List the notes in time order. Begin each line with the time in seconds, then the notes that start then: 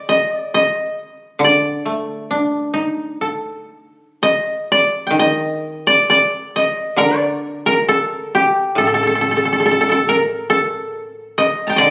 Already playing: D5
0.09 D#5
0.33 D5
0.54 D#5
1.39 D3
1.44 D5
1.86 A3
2.31 D4
2.43 D#5
2.63 D5
2.74 D#4
2.97 D#5
3.17 A4 D5
4.23 D#5
4.72 D5
5.07 D#3 G5
5.19 D#5
5.87 D5
6.10 D5
6.56 D#5
6.96 D3 D5
7.66 A#4
7.89 A4
8.35 G4
8.75 A2 A4
8.87 A4
8.94 A4
9.03 A4
9.07 A4
9.15 A4
9.21 A4
9.31 A4
9.37 A4
9.45 A4
9.53 A4
9.60 A4
9.66 A4
9.71 A4
9.81 A4
9.89 A4
10.09 A#4
10.50 A4
11.38 D#5
11.67 G5 A5 A#5
11.76 D3 D5 D#5